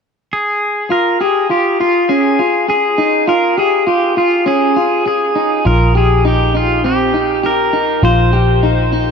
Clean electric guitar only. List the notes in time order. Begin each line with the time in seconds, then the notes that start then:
0.90 F4
1.21 G4
1.50 F4
1.80 F4
2.09 C#4
2.39 F4
2.68 G#4
2.98 D#4
3.28 F4
3.58 G4
3.87 F4
4.17 F4
4.46 C#4
4.76 F4
5.06 G#4
5.35 D#4
5.65 F4
5.95 G4
6.25 D#4
6.55 D#4
6.84 C4
7.14 D#4
7.43 G4
7.73 D#4
8.03 F4
8.33 G4
8.63 D#4
8.93 D#4